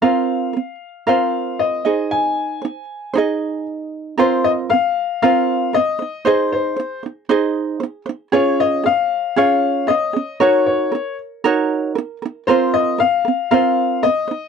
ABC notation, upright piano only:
X:1
M:4/4
L:1/8
Q:1/4=116
K:Bbm
V:1 name="Upright piano"
f4 f2 e2 | a6 z2 | c e f2 f2 e2 | c c2 z4 z |
d e f2 f2 e2 | d d2 z4 z | c e f2 f2 e2 |]